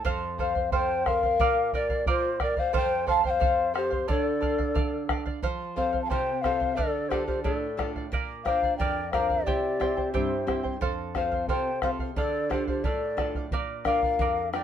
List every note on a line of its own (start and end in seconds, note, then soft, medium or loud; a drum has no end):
0.05 1.36 F2 medium
0.05 0.38 A4 medium
0.05 0.38 C5 loud
0.05 0.39 F5 loud
0.05 bombo low medium
0.39 0.56 A4 medium
0.39 0.70 C5 medium
0.39 0.55 C5 medium
0.39 0.70 F5 medium
0.39 0.54 F5 medium
0.39 bombo low medium
0.55 0.71 C5 soft
0.55 0.72 F5 soft
0.55 bombo low soft
0.72 1.04 A4 medium
0.72 1.05 C5 medium
0.72 1.08 C5 medium
0.72 1.06 F5 medium
0.72 1.09 G5 medium
0.72 bombo low medium
1.06 1.23 A4 medium
1.06 1.74 A#4 medium
1.06 1.23 C5 medium
1.06 1.22 F5 medium
1.06 1.74 F5 medium
1.06 bombo rim soft
1.06 bombo low medium
1.23 1.41 C5 soft
1.23 1.40 F5 medium
1.23 bombo low soft
1.40 2.70 A#2 medium
1.40 1.72 A#4 medium
1.40 1.73 D5 medium
1.40 1.74 F5 medium
1.40 bombo low medium
1.73 1.90 A#4 medium
1.73 2.05 A#4 medium
1.73 1.89 D5 medium
1.73 2.06 D5 medium
1.73 1.88 F5 medium
1.73 bombo low soft
1.90 2.06 D5 soft
1.90 2.06 F5 medium
1.90 bombo low medium
2.06 2.39 F4 medium
2.06 2.39 A#4 medium
2.06 2.39 C5 medium
2.06 2.39 D5 medium
2.06 2.40 F5 medium
2.06 bombo low medium
2.40 2.57 A#4 medium
2.40 2.60 A#4 medium
2.40 2.56 D5 medium
2.40 2.61 D5 medium
2.40 2.55 F5 medium
2.40 bombo rim medium
2.40 bombo low medium
2.57 2.75 C5 medium
2.57 2.73 D5 soft
2.57 2.73 F5 medium
2.57 2.75 F5 medium
2.57 bombo low medium
2.73 4.05 F2 medium
2.73 3.05 A4 medium
2.73 3.06 C5 medium
2.73 3.07 C5 medium
2.73 3.07 F5 loud
2.73 3.06 G5 loud
2.73 bombo low medium
3.07 3.24 A4 medium
3.07 3.23 C5 medium
3.07 3.22 F5 medium
3.07 3.24 F5 medium
3.07 3.24 A5 medium
3.07 bombo low medium
3.24 3.39 C5 soft
3.24 3.72 C5 medium
3.24 3.40 F5 medium
3.24 3.31 G5 medium
3.24 bombo low medium
3.30 3.72 F5 medium
3.40 3.72 A4 medium
3.40 3.73 C5 medium
3.40 3.74 F5 medium
3.40 bombo low medium
3.74 4.07 G4 medium
3.74 3.91 A4 medium
3.74 3.90 C5 medium
3.74 4.07 C5 medium
3.74 3.89 F5 medium
3.74 bombo rim medium
3.90 4.09 C5 soft
3.90 4.07 F5 medium
3.90 bombo low soft
4.08 5.39 D3 medium
4.08 4.39 A4 medium
4.08 5.06 A4 medium
4.08 4.22 C#5 medium
4.08 4.40 D5 medium
4.08 4.41 F5 medium
4.08 bombo low medium
4.22 5.06 D5 medium
4.41 4.58 A4 medium
4.41 4.58 D5 medium
4.41 4.57 F5 medium
4.41 bombo low medium
4.58 4.74 D5 soft
4.58 4.74 F5 medium
4.58 bombo low medium
4.74 5.08 A4 medium
4.74 5.08 D5 medium
4.74 5.09 F5 medium
4.74 bombo low medium
5.09 5.26 A4 medium
5.09 5.26 D5 medium
5.09 5.24 F5 medium
5.09 bombo rim medium
5.09 bombo low medium
5.26 5.42 D5 medium
5.26 5.43 F5 medium
5.26 bombo low soft
5.42 6.08 F3 medium
5.42 5.75 A4 medium
5.42 5.76 C5 medium
5.42 5.76 F5 medium
5.42 bombo low medium
5.76 6.30 C4 soft
5.76 6.31 F4 soft
5.76 5.93 A4 soft
5.76 6.31 A4 soft
5.76 5.92 C5 medium
5.76 6.02 C5 medium
5.76 6.01 F5 medium
5.76 5.91 F5 medium
5.76 bombo low soft
5.93 6.09 C5 soft
5.93 6.10 F5 soft
5.93 bombo low soft
6.02 6.12 F5 medium
6.02 6.10 A5 medium
6.09 6.76 C3 medium
6.09 6.42 A4 medium
6.09 6.42 C5 medium
6.09 6.43 C5 medium
6.09 6.43 F5 medium
6.09 6.43 G5 loud
6.09 bombo low medium
6.42 6.71 C4 soft
6.42 6.71 F4 soft
6.42 6.60 A4 soft
6.42 6.77 C5 medium
6.42 6.59 C5 soft
6.42 6.77 F5 medium
6.42 6.58 F5 soft
6.42 bombo rim medium
6.42 bombo low medium
6.46 6.72 A4 soft
6.60 6.78 C5 soft
6.60 6.76 F5 soft
6.60 bombo low soft
6.76 7.43 D3 medium
6.76 7.12 A4 medium
6.76 7.09 A4 medium
6.76 7.11 D5 medium
6.76 7.10 D5 medium
6.76 7.11 F5 medium
6.76 bombo low medium
7.09 7.64 D4 soft
7.09 7.65 F4 soft
7.09 7.26 G4 medium
7.09 7.28 A4 medium
7.09 7.65 A4 soft
7.09 7.26 C5 medium
7.09 7.28 D5 medium
7.09 7.27 F5 medium
7.09 bombo rim soft
7.09 bombo low soft
7.27 7.43 G4 medium
7.27 7.43 C5 medium
7.27 7.43 D5 soft
7.27 7.44 F5 soft
7.27 bombo low medium
7.43 8.10 A2 medium
7.43 7.91 A4 medium
7.43 7.78 A4 medium
7.43 7.91 D5 medium
7.43 7.78 D5 medium
7.43 7.79 F5 medium
7.43 bombo low medium
7.77 8.05 D4 soft
7.77 8.05 F4 soft
7.77 8.05 A4 medium
7.77 7.95 A4 medium
7.77 7.96 D5 soft
7.77 7.94 F5 medium
7.77 bombo rim medium
7.77 bombo low medium
7.95 8.12 D5 soft
7.95 8.12 F5 soft
7.95 bombo low soft
8.12 8.77 A#2 medium
8.12 8.45 A#4 medium
8.12 8.46 D5 medium
8.12 8.47 F5 medium
8.12 bombo low medium
8.44 8.99 D4 soft
8.44 8.99 F4 soft
8.44 8.99 A#4 soft
8.44 8.63 A#4 medium
8.44 8.77 C5 medium
8.44 8.63 D5 medium
8.44 8.76 F5 medium
8.44 8.62 F5 medium
8.44 bombo rim soft
8.44 bombo low soft
8.63 8.79 D5 soft
8.63 8.80 F5 soft
8.63 bombo low soft
8.78 9.45 F2 medium
8.78 9.12 A#4 medium
8.78 9.10 D5 medium
8.78 9.13 D5 medium
8.78 9.13 F5 medium
8.78 9.10 G5 medium
8.78 bombo low medium
9.11 9.40 D4 soft
9.11 9.40 F4 soft
9.11 9.30 A#4 soft
9.11 9.40 A#4 soft
9.11 9.46 C5 medium
9.11 9.29 D5 medium
9.11 9.47 F5 medium
9.11 9.28 F5 medium
9.11 bombo rim medium
9.11 bombo low medium
9.30 9.47 D5 soft
9.30 9.46 F5 medium
9.30 bombo low soft
9.45 10.12 C3 medium
9.45 9.79 E4 medium
9.45 10.13 G4 medium
9.45 9.80 G4 medium
9.45 9.80 C5 medium
9.45 10.13 D5 medium
9.45 9.79 E5 medium
9.45 9.80 G5 medium
9.45 bombo low medium
9.80 10.34 C4 soft
9.80 9.97 E4 medium
9.80 10.34 E4 soft
9.80 10.34 G4 soft
9.80 9.96 C5 medium
9.80 9.97 E5 medium
9.80 9.96 G5 medium
9.80 bombo rim soft
9.80 bombo low soft
9.97 10.13 E4 soft
9.97 10.13 C5 soft
9.97 10.14 G5 soft
9.97 bombo low soft
10.13 10.79 G2 medium
10.13 10.46 E4 medium
10.13 10.61 G4 medium
10.13 10.48 G4 medium
10.13 10.61 C5 medium
10.13 10.46 C5 medium
10.13 10.46 E5 medium
10.13 10.47 G5 medium
10.13 bombo low medium
10.47 10.74 C4 soft
10.47 10.74 E4 soft
10.47 10.64 E4 medium
10.47 10.74 G4 soft
10.47 10.63 C5 medium
10.47 10.64 E5 medium
10.47 10.62 G5 soft
10.47 bombo rim soft
10.47 bombo low soft
10.63 10.82 E4 soft
10.63 10.80 C5 soft
10.63 10.81 G5 soft
10.63 bombo low soft
10.81 11.47 F2 medium
10.81 11.15 A4 medium
10.81 11.15 C5 medium
10.81 11.15 F5 medium
10.81 bombo low medium
11.15 11.69 C4 soft
11.15 11.69 F4 soft
11.15 11.69 A4 soft
11.15 11.32 A4 medium
11.15 11.47 C5 medium
11.15 11.31 C5 medium
11.15 11.46 F5 medium
11.15 11.30 F5 medium
11.15 bombo rim soft
11.15 bombo low soft
11.31 11.48 C5 soft
11.31 11.49 F5 medium
11.31 bombo low soft
11.48 12.14 C3 medium
11.48 11.82 A4 medium
11.48 11.80 C5 medium
11.48 11.82 C5 medium
11.48 11.83 F5 medium
11.48 11.80 G5 medium
11.48 bombo low medium
11.82 12.10 C4 soft
11.82 12.10 F4 soft
11.82 12.00 A4 medium
11.82 12.10 A4 medium
11.82 11.90 C5 medium
11.82 12.00 C5 medium
11.82 11.90 F5 medium
11.82 11.99 F5 medium
11.82 bombo rim medium
11.82 bombo low medium
11.99 12.17 C5 soft
11.99 12.17 F5 soft
11.99 bombo low medium
12.16 12.82 D3 medium
12.16 12.50 A4 medium
12.16 12.53 A4 medium
12.16 12.52 D5 medium
12.16 12.51 D5 medium
12.16 12.51 F5 medium
12.16 bombo low medium
12.50 13.04 D4 soft
12.50 13.04 F4 soft
12.50 12.68 G4 medium
12.50 13.04 A4 soft
12.50 12.67 A4 medium
12.50 12.67 C5 medium
12.50 12.67 D5 medium
12.50 12.66 F5 medium
12.50 bombo rim soft
12.50 bombo low medium
12.67 12.86 G4 medium
12.67 12.86 C5 medium
12.67 12.84 D5 soft
12.67 12.84 F5 soft
12.67 bombo low medium
12.84 13.49 A2 medium
12.84 13.17 A4 medium
12.84 13.35 A4 medium
12.84 13.35 D5 medium
12.84 13.18 D5 medium
12.84 13.18 F5 medium
12.84 bombo low medium
13.17 13.44 D4 soft
13.17 13.45 F4 soft
13.17 13.35 A4 soft
13.17 13.45 A4 soft
13.17 13.35 D5 medium
13.17 13.34 F5 soft
13.17 bombo rim medium
13.17 bombo low medium
13.35 13.52 D5 soft
13.35 13.52 F5 soft
13.35 bombo low medium
13.51 14.17 A#2 medium
13.51 13.85 A#4 medium
13.51 13.86 D5 medium
13.51 13.86 F5 medium
13.51 bombo low medium
13.85 14.39 D4 soft
13.85 14.40 F4 soft
13.85 14.49 A#4 medium
13.85 14.40 A#4 medium
13.85 14.03 A#4 medium
13.85 14.03 D5 medium
13.85 14.49 F5 medium
13.85 14.03 F5 medium
13.85 bombo rim medium
13.85 bombo low medium
14.02 14.20 D5 soft
14.02 14.20 F5 medium
14.02 bombo low medium
14.19 14.63 F2 medium
14.19 14.53 A#4 medium
14.19 14.54 D5 medium
14.19 14.54 F5 medium
14.19 bombo low medium
14.53 14.63 D4 soft
14.53 14.63 F4 soft
14.53 14.63 A#4 medium
14.53 14.63 A#4 soft
14.53 14.63 D5 medium
14.53 14.63 F5 medium
14.53 14.63 G5 medium
14.53 bombo rim medium